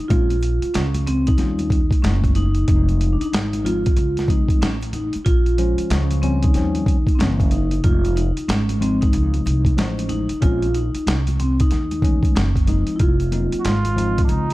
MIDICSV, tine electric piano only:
0, 0, Header, 1, 2, 480
1, 0, Start_track
1, 0, Key_signature, -5, "minor"
1, 0, Tempo, 645161
1, 72, Time_signature, 4, 2, 24, 8
1, 10814, End_track
2, 0, Start_track
2, 0, Title_t, "Tine electric piano"
2, 0, Program_c, 0, 4
2, 69, Note_on_c, 0, 56, 61
2, 74, Note_on_c, 0, 60, 58
2, 75, Note_on_c, 0, 61, 58
2, 82, Note_on_c, 0, 65, 69
2, 260, Note_off_c, 0, 56, 0
2, 262, Note_off_c, 0, 60, 0
2, 263, Note_off_c, 0, 61, 0
2, 266, Note_off_c, 0, 65, 0
2, 1024, Note_on_c, 0, 55, 64
2, 1031, Note_on_c, 0, 60, 55
2, 1033, Note_on_c, 0, 61, 58
2, 1039, Note_on_c, 0, 65, 70
2, 1330, Note_off_c, 0, 55, 0
2, 1334, Note_off_c, 0, 60, 0
2, 1335, Note_off_c, 0, 61, 0
2, 1338, Note_off_c, 0, 65, 0
2, 1512, Note_on_c, 0, 56, 63
2, 1519, Note_on_c, 0, 57, 54
2, 1525, Note_on_c, 0, 61, 57
2, 1526, Note_on_c, 0, 64, 64
2, 1814, Note_off_c, 0, 56, 0
2, 1818, Note_off_c, 0, 57, 0
2, 1821, Note_off_c, 0, 61, 0
2, 1821, Note_off_c, 0, 64, 0
2, 1992, Note_on_c, 0, 53, 61
2, 1996, Note_on_c, 0, 56, 56
2, 2002, Note_on_c, 0, 60, 56
2, 2008, Note_on_c, 0, 62, 56
2, 2053, Note_on_c, 0, 63, 72
2, 2063, Note_off_c, 0, 62, 0
2, 2357, Note_off_c, 0, 53, 0
2, 2359, Note_off_c, 0, 56, 0
2, 2361, Note_off_c, 0, 60, 0
2, 2387, Note_off_c, 0, 63, 0
2, 2710, Note_on_c, 0, 53, 62
2, 2712, Note_on_c, 0, 56, 59
2, 2718, Note_on_c, 0, 60, 60
2, 2723, Note_on_c, 0, 63, 66
2, 2900, Note_off_c, 0, 53, 0
2, 2902, Note_off_c, 0, 56, 0
2, 2904, Note_off_c, 0, 60, 0
2, 2907, Note_off_c, 0, 63, 0
2, 3189, Note_on_c, 0, 53, 58
2, 3196, Note_on_c, 0, 56, 56
2, 3196, Note_on_c, 0, 60, 59
2, 3201, Note_on_c, 0, 63, 69
2, 3493, Note_off_c, 0, 53, 0
2, 3496, Note_off_c, 0, 56, 0
2, 3496, Note_off_c, 0, 60, 0
2, 3499, Note_off_c, 0, 63, 0
2, 4148, Note_on_c, 0, 53, 62
2, 4152, Note_on_c, 0, 56, 58
2, 4159, Note_on_c, 0, 61, 72
2, 4159, Note_on_c, 0, 72, 60
2, 4623, Note_off_c, 0, 53, 0
2, 4632, Note_off_c, 0, 61, 0
2, 4632, Note_on_c, 0, 53, 64
2, 4633, Note_on_c, 0, 55, 59
2, 4641, Note_on_c, 0, 60, 60
2, 4641, Note_on_c, 0, 61, 76
2, 4838, Note_off_c, 0, 56, 0
2, 4842, Note_off_c, 0, 72, 0
2, 4860, Note_off_c, 0, 53, 0
2, 4863, Note_off_c, 0, 55, 0
2, 4868, Note_off_c, 0, 60, 0
2, 4869, Note_on_c, 0, 53, 65
2, 4872, Note_on_c, 0, 55, 57
2, 4875, Note_off_c, 0, 61, 0
2, 4877, Note_on_c, 0, 60, 60
2, 4884, Note_on_c, 0, 61, 65
2, 5173, Note_off_c, 0, 53, 0
2, 5174, Note_off_c, 0, 55, 0
2, 5177, Note_off_c, 0, 60, 0
2, 5180, Note_off_c, 0, 61, 0
2, 5358, Note_on_c, 0, 52, 68
2, 5358, Note_on_c, 0, 56, 65
2, 5366, Note_on_c, 0, 57, 65
2, 5369, Note_on_c, 0, 61, 76
2, 5544, Note_off_c, 0, 52, 0
2, 5544, Note_off_c, 0, 56, 0
2, 5548, Note_off_c, 0, 57, 0
2, 5550, Note_off_c, 0, 61, 0
2, 5836, Note_on_c, 0, 53, 56
2, 5843, Note_on_c, 0, 56, 49
2, 5847, Note_on_c, 0, 60, 55
2, 5849, Note_on_c, 0, 63, 64
2, 6136, Note_off_c, 0, 53, 0
2, 6140, Note_off_c, 0, 56, 0
2, 6142, Note_off_c, 0, 60, 0
2, 6143, Note_off_c, 0, 63, 0
2, 6548, Note_on_c, 0, 53, 67
2, 6553, Note_on_c, 0, 56, 63
2, 6556, Note_on_c, 0, 60, 64
2, 6563, Note_on_c, 0, 63, 76
2, 7236, Note_off_c, 0, 53, 0
2, 7239, Note_off_c, 0, 56, 0
2, 7240, Note_off_c, 0, 60, 0
2, 7244, Note_off_c, 0, 63, 0
2, 7268, Note_on_c, 0, 53, 66
2, 7271, Note_on_c, 0, 56, 58
2, 7280, Note_on_c, 0, 63, 74
2, 7280, Note_on_c, 0, 72, 59
2, 7634, Note_off_c, 0, 53, 0
2, 7636, Note_off_c, 0, 56, 0
2, 7641, Note_off_c, 0, 63, 0
2, 7641, Note_off_c, 0, 72, 0
2, 7743, Note_on_c, 0, 53, 68
2, 7746, Note_on_c, 0, 56, 64
2, 7751, Note_on_c, 0, 60, 63
2, 7755, Note_on_c, 0, 61, 81
2, 7937, Note_off_c, 0, 53, 0
2, 7938, Note_off_c, 0, 56, 0
2, 7941, Note_off_c, 0, 60, 0
2, 7943, Note_off_c, 0, 61, 0
2, 8939, Note_on_c, 0, 52, 64
2, 8944, Note_on_c, 0, 56, 54
2, 8950, Note_on_c, 0, 57, 60
2, 8956, Note_on_c, 0, 61, 72
2, 9248, Note_off_c, 0, 52, 0
2, 9251, Note_off_c, 0, 56, 0
2, 9253, Note_off_c, 0, 57, 0
2, 9256, Note_off_c, 0, 61, 0
2, 9425, Note_on_c, 0, 53, 61
2, 9429, Note_on_c, 0, 56, 53
2, 9434, Note_on_c, 0, 60, 52
2, 9442, Note_on_c, 0, 63, 70
2, 9731, Note_off_c, 0, 53, 0
2, 9733, Note_off_c, 0, 56, 0
2, 9735, Note_off_c, 0, 60, 0
2, 9739, Note_off_c, 0, 63, 0
2, 9908, Note_on_c, 0, 54, 59
2, 9908, Note_on_c, 0, 58, 60
2, 9912, Note_on_c, 0, 60, 57
2, 9919, Note_on_c, 0, 63, 73
2, 10212, Note_off_c, 0, 54, 0
2, 10212, Note_off_c, 0, 58, 0
2, 10215, Note_off_c, 0, 60, 0
2, 10218, Note_off_c, 0, 63, 0
2, 10386, Note_on_c, 0, 53, 77
2, 10389, Note_on_c, 0, 56, 67
2, 10393, Note_on_c, 0, 60, 68
2, 10397, Note_on_c, 0, 63, 79
2, 10754, Note_off_c, 0, 53, 0
2, 10755, Note_off_c, 0, 56, 0
2, 10757, Note_off_c, 0, 60, 0
2, 10759, Note_off_c, 0, 63, 0
2, 10814, End_track
0, 0, End_of_file